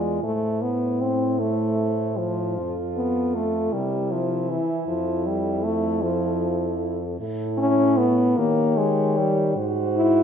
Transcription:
Already playing: E2 G#3 F4 D5
0.23 A2 A3 E4 C5
0.62 B3
1.01 C4
1.40 A3
2.18 F3
2.57 F2 F4 A4
2.96 B3
3.35 A3
3.72 C3 G3 E4 A#4
4.12 F3
4.49 E3
4.87 F2 F3 A4
5.26 G3
5.64 A3
6.03 F3
7.19 A2 E4 A4
7.58 C#4
7.97 B3
8.37 D#3 A#3 G4 C#5
8.77 G#3
9.18 G3
9.55 G#2 F#4 C5
9.96 E4

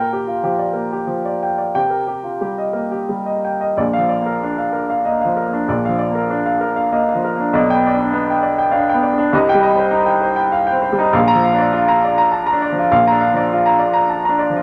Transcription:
Already playing: A#2 G5
0.00 A#4
0.13 G4
0.27 F4
0.43 F3 G4
0.59 D5
0.73 A#3 A#4
0.92 G4
1.07 F3
1.25 D5
1.43 G5
1.58 D5
1.75 C3 G5
1.90 A#4
2.07 G4
2.23 F4
2.41 G3 G4
2.58 D#5
2.73 A#3 A#4
2.92 G4
3.09 G3
3.26 D#5
3.45 G5
3.61 D#5
3.77 A#1 A#2 D5
3.93 F5
3.98 F3
4.09 D5
4.21 A#3
4.26 A#4
4.43 D4
4.58 F5
4.73 A#4
4.90 F5
5.05 A#3 D#5
5.21 F3 F5
5.37 A#4
5.47 A#3
5.53 D4
5.68 A#1 A#2 D5
5.85 F3 F5
5.99 D5
6.10 A#3
6.15 A#4
6.30 D4
6.46 F5
6.61 A#4
6.76 F5
6.92 A#3 D#5
7.09 F5
7.15 F3
7.24 A#4
7.35 A#3
7.40 D4
7.53 B1 B2 D5
7.70 B3 G5
7.86 D5
7.94 D4
8.01 D4
8.13 B3
8.30 G5
8.43 D5
8.58 G5
8.71 D4 F5
8.89 G5
8.94 B3
9.03 D5
9.13 D4
9.18 D4
9.33 C2 C3 D#5
9.49 G5
9.54 G3
9.63 D#5
9.75 C4
9.79 C5
9.91 D#4
10.06 G5
10.21 C5
10.36 G5
10.52 F5
10.67 G5
10.72 C4
10.82 C5
10.92 G3
10.99 D#4
11.13 A#1 A#2 F5
11.28 A#5
11.35 F3
11.44 F5
11.54 D4
11.58 D5
11.73 F4
11.88 A#5
12.04 D5
12.18 A#5
12.32 A5
12.46 A#5
12.52 D4
12.62 D5
12.72 F3
12.78 F4
12.91 A#1 A#2 F5
13.07 A#5
13.12 D4
13.21 F5
13.34 F3 D5
13.53 F4
13.66 A#5
13.79 D5
13.93 A#5
14.10 A5
14.25 D4 A#5
14.39 D5
14.50 F3
14.56 F4

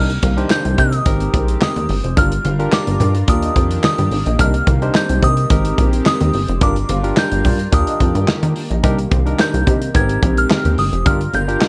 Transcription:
Already playing: C2 C3 D#3 G3 A#3 G4 F6
0.10 muted clean electric guitar stroke, closed hi-hat
0.22 C2 G4 A#4 F5, kick, closed hi-hat, muted conga
0.37 D4 D#4 G4 A#4 C5 D#5, closed hi-hat
0.50 G6, muted clean electric guitar stroke, snare, clap, high conga
0.65 C2, muted clean electric guitar stroke, closed hi-hat
0.78 C3 G4 A#4 D#5 D#6, kick, closed hi-hat, muted conga
0.93 G4 A#4, closed hi-hat
1.06 G#1 G#3 C4 D#4 G4 A#4, muted clean electric guitar stroke, kick, closed hi-hat, muted conga
1.20 C4 G4 C5, closed hi-hat
1.33 A#1 C4 G4 A#4, kick, closed hi-hat
1.48 muted clean electric guitar stroke, closed hi-hat
1.61 C4 G4 A#4 D#6, snare, clap, high conga
1.76 D#2, muted clean electric guitar stroke, closed hi-hat, high conga
1.89 G1, muted clean electric guitar stroke, open hi-hat
2.04 F1 C4 G4 C5, closed hi-hat
2.17 G1 G3 D4 F4 G4 A#4 D5 F6, kick, closed hi-hat, muted conga
2.32 muted clean electric guitar stroke, closed hi-hat
2.44 G1 F4 G4 A#4 C5 F5, closed hi-hat, muted conga
2.59 D4 F4 G4 A#4 D5, closed hi-hat
2.72 D6, snare, clap, high conga
2.87 G1, muted clean electric guitar stroke, closed hi-hat
3.00 G2 F4 A#4 D5, closed hi-hat, muted conga, low conga
3.15 F4 A#4 D5, closed hi-hat
3.28 D#2 D#3 A#3 D4 F4 G4 A#4 D#6, kick, closed hi-hat, muted conga
3.43 D#4 G4 D#5, closed hi-hat
3.56 F2 D#4 G4 D5, kick, closed hi-hat
3.71 muted clean electric guitar stroke, closed hi-hat
3.83 D#4 G4 D5 D#6, snare, clap, high conga
3.98 G2, closed hi-hat, high conga
4.11 G#1, muted clean electric guitar stroke, open hi-hat
4.26 A#1 D#4 G4 D#5, closed hi-hat
4.39 C2 C3 D#3 G3 D4 D#4 G4 A#4 D#5 F6, kick, closed hi-hat, muted conga
4.54 muted clean electric guitar stroke, closed hi-hat
4.66 C2 G4 A#4 F5, kick, closed hi-hat, muted conga
4.81 D4 D#4 G4 A#4 C5 D#5, closed hi-hat
4.94 G6, muted clean electric guitar stroke, snare, clap, high conga
5.09 C2, muted clean electric guitar stroke, closed hi-hat
5.22 C3 G4 A#4 D#5 D#6, kick, closed hi-hat, muted conga
5.37 G4 A#4 D#5, closed hi-hat
5.50 G#1 G#3 C4 D#4 G4 A#4, muted clean electric guitar stroke, kick, closed hi-hat
5.65 C4 G4 C5, closed hi-hat
5.78 A#1 C4 G4 A#4, kick, closed hi-hat
5.93 muted clean electric guitar stroke, closed hi-hat
6.06 C4 G4 A#4 D#6, snare, clap, high conga
6.21 D#2, muted clean electric guitar stroke, closed hi-hat, high conga
6.33 G1, muted clean electric guitar stroke, open hi-hat
6.48 F1 C4 G4 C5, closed hi-hat
6.61 G1 G3 D4 F4 G4 A#4 D5 D6, kick, closed hi-hat, muted conga
6.76 muted clean electric guitar stroke, closed hi-hat
6.89 G1 F4 G4 A#4 C5 F5, closed hi-hat, muted conga
7.03 D4 F4 G4 A#4 D5, closed hi-hat
7.16 G6, snare, clap, high conga
7.32 G1, muted clean electric guitar stroke, closed hi-hat
7.45 G2 F4 A#4 D5, kick, open hi-hat, muted conga, low conga
7.59 F4 A#4 D5, closed hi-hat
7.72 D#2 D#3 A#3 D4 F4 G4 A#4 D#6, muted clean electric guitar stroke, kick, closed hi-hat
7.87 D#4 G4 D#5, closed hi-hat
8.00 F2 D#4 G4 D5, kick, closed hi-hat
8.15 G2, muted clean electric guitar stroke, closed hi-hat
8.28 D#4 G4 D5, snare, clap, high conga
8.43 D#3, muted clean electric guitar stroke, closed hi-hat, high conga
8.56 muted clean electric guitar stroke, open hi-hat
8.70 A#1 D#4 G4 D#5, closed hi-hat
8.83 C2 C3 D#3 G3 D4 D#4 G4 A#4 D#5, kick, closed hi-hat, muted conga
8.98 muted clean electric guitar stroke, closed hi-hat
9.11 C2 G4 A#4 C5 F5, kick, closed hi-hat, muted conga
9.25 D4 D#4 G4 A#4 D#5, closed hi-hat
9.39 G6, snare, clap, high conga
9.54 C2, muted clean electric guitar stroke, closed hi-hat
9.67 C3 G4 A#4 D#5, kick, closed hi-hat, muted conga
9.81 G4 A#4 D#5, closed hi-hat
9.94 G#1 G#3 B3 C4 D#4 G4 A#4 G#6, muted clean electric guitar stroke, kick, closed hi-hat, muted conga
10.01 C4
10.09 C4 G4 C5, closed hi-hat
10.22 A#1 C4 G4 A#4, kick, closed hi-hat
10.37 F6, muted clean electric guitar stroke, closed hi-hat
10.50 C4 G4 A#4, snare, clap, high conga
10.65 D#2, muted clean electric guitar stroke, closed hi-hat, high conga
10.78 G1 D#6, muted clean electric guitar stroke, open hi-hat
10.92 F1 C4 G4 C5, closed hi-hat
11.05 G1 G3 D4 F4 G4 A#4 D5 F6, kick, closed hi-hat, muted conga
11.20 muted clean electric guitar stroke, closed hi-hat
11.33 G1 F4 G4 A#4 F5 G6, closed hi-hat, muted conga
11.48 D4 F4 G4 A#4 D5, closed hi-hat
11.61 muted clean electric guitar stroke, snare, clap, high conga

